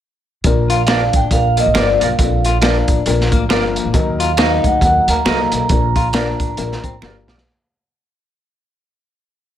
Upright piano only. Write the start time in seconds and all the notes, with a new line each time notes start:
0.45 F3 A#3 D4 A#4
0.88 F3 A#3 C4 F4
0.94 D4
1.30 F3 A#3 D4 A#4
1.74 F3 A#3 D4 C5
2.18 F3 A#3 C4 A4
2.24 D4
2.62 F3 A#3 D4 A#4
3.06 F3 A#3 D4 A#4
3.50 F3 A#3 C4 A#4
3.56 D4
3.93 F#3 A#3 D#4 A#4
4.38 F#3 A#3 D#4 A#4
4.82 F#3 A#3 D#4 A#4
5.25 F#3 A#3 D#4 A4
5.70 F3 A#3 D4 A#4
6.14 F3 A#3 D4 A#4
6.57 F3 A#3 D4 A#4
7.02 F3 A#3 D4 F#4
7.08 G4